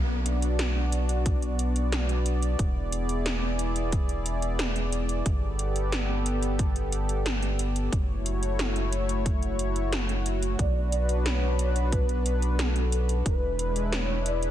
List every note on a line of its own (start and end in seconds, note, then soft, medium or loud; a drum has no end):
0.00 2.56 B1 medium
0.00 5.22 B3 medium
0.00 2.56 D4 medium
0.00 2.56 F#4 medium
0.00 7.88 D5 medium
0.26 closed hi-hat medium
0.42 closed hi-hat medium
0.59 snare loud
0.59 closed hi-hat medium
0.92 closed hi-hat medium
1.09 closed hi-hat medium
1.26 kick loud
1.26 closed hi-hat medium
1.42 closed hi-hat soft
1.59 closed hi-hat medium
1.76 closed hi-hat soft
1.92 snare loud
1.92 closed hi-hat medium
2.09 closed hi-hat soft
2.26 closed hi-hat medium
2.42 closed hi-hat medium
2.59 5.22 E1 medium
2.59 5.23 E4 medium
2.59 5.23 G#4 medium
2.59 kick loud
2.59 closed hi-hat medium
2.92 closed hi-hat medium
3.09 closed hi-hat medium
3.26 snare loud
3.26 closed hi-hat medium
3.59 closed hi-hat medium
3.76 closed hi-hat soft
3.92 kick loud
3.92 closed hi-hat medium
4.09 closed hi-hat soft
4.26 closed hi-hat medium
4.42 closed hi-hat medium
4.59 snare loud
4.59 closed hi-hat medium
4.76 closed hi-hat soft
4.92 closed hi-hat medium
5.09 closed hi-hat soft
5.26 7.89 G1 medium
5.26 7.90 B3 medium
5.26 7.90 G4 medium
5.26 7.90 A4 medium
5.26 kick loud
5.26 closed hi-hat medium
5.59 closed hi-hat medium
5.76 closed hi-hat medium
5.92 snare loud
5.92 closed hi-hat medium
6.26 closed hi-hat medium
6.43 closed hi-hat medium
6.59 kick loud
6.59 closed hi-hat medium
6.76 closed hi-hat soft
6.92 closed hi-hat medium
7.09 closed hi-hat soft
7.26 snare loud
7.26 closed hi-hat medium
7.43 closed hi-hat soft
7.59 closed hi-hat medium
7.76 closed hi-hat soft
7.92 10.56 F#1 medium
7.92 10.57 A3 medium
7.92 10.57 E4 medium
7.92 13.22 F#4 medium
7.92 10.57 C#5 medium
7.92 kick loud
7.92 closed hi-hat medium
8.26 closed hi-hat medium
8.43 closed hi-hat soft
8.59 snare loud
8.59 closed hi-hat medium
8.76 closed hi-hat soft
8.93 closed hi-hat medium
9.09 closed hi-hat soft
9.26 kick loud
9.26 closed hi-hat medium
9.43 closed hi-hat soft
9.59 closed hi-hat medium
9.76 closed hi-hat soft
9.93 snare loud
9.93 closed hi-hat medium
10.09 closed hi-hat soft
10.26 closed hi-hat medium
10.43 closed hi-hat soft
10.59 13.22 B1 medium
10.59 13.23 B3 medium
10.59 13.23 D4 medium
10.59 13.23 B4 medium
10.59 11.27 D5 loud
10.59 kick loud
10.59 closed hi-hat medium
10.92 closed hi-hat medium
11.09 closed hi-hat soft
11.26 11.92 C#5 loud
11.26 snare loud
11.26 closed hi-hat medium
11.59 closed hi-hat medium
11.76 closed hi-hat soft
11.92 12.55 B4 loud
11.92 kick loud
11.92 closed hi-hat medium
12.09 closed hi-hat soft
12.26 closed hi-hat medium
12.42 closed hi-hat soft
12.59 13.22 A4 medium
12.59 snare loud
12.59 closed hi-hat medium
12.76 closed hi-hat soft
12.92 closed hi-hat medium
13.09 closed hi-hat soft
13.26 14.51 E1 medium
13.26 14.51 G#3 medium
13.26 14.51 D4 medium
13.26 14.51 E4 medium
13.26 13.88 B4 loud
13.26 14.51 B4 medium
13.26 kick loud
13.26 closed hi-hat medium
13.59 closed hi-hat medium
13.76 closed hi-hat soft
13.92 14.27 C#5 loud
13.92 snare loud
13.92 closed hi-hat medium
14.26 14.51 D5 loud
14.26 closed hi-hat medium
14.43 closed hi-hat soft